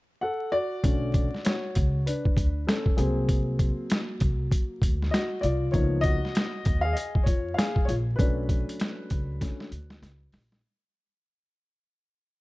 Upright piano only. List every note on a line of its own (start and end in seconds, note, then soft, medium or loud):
0.21 0.51 A4 medium
0.21 0.53 F#5 medium
0.52 1.41 F#4 medium
0.52 1.40 D5 loud
0.83 1.27 D3 medium
0.83 1.27 A3 soft
0.83 1.27 C#4 medium
1.45 2.03 F#4 medium
1.45 2.02 C#5 medium
2.06 2.64 D4 medium
2.06 2.69 B4 medium
2.67 2.96 C#4 medium
2.67 2.99 A4 medium
2.97 5.38 F#3 medium
2.97 5.38 A#3 soft
2.97 3.86 C4 medium
2.97 3.85 G#4 medium
5.11 5.41 F#4 medium
5.11 5.43 D#5 medium
5.41 5.72 F4 medium
5.41 5.73 D5 medium
5.72 6.16 F3 medium
5.72 6.17 A#3 soft
5.72 6.17 B3 medium
5.72 6.17 D#4 medium
5.72 6.02 F4 medium
5.72 6.04 C#5 medium
6.01 6.80 F#4 medium
6.01 6.85 D#5 loud
6.81 6.95 G#4 medium
6.81 6.95 F5 loud
6.93 7.25 G#4 medium
6.93 7.26 D#5 medium
7.24 7.55 F4 medium
7.24 7.57 C#5 medium
7.54 7.86 G#4 medium
7.54 7.84 F5 medium
7.85 7.96 F4 medium
7.85 7.92 C#5 medium
8.16 10.59 F#3 medium
8.16 9.40 A3 medium
8.16 9.40 C#4 medium
8.16 10.29 D4 medium
8.16 10.27 B4 medium
9.41 9.68 D3 soft
9.41 9.69 A3 soft
9.41 9.69 C#4 medium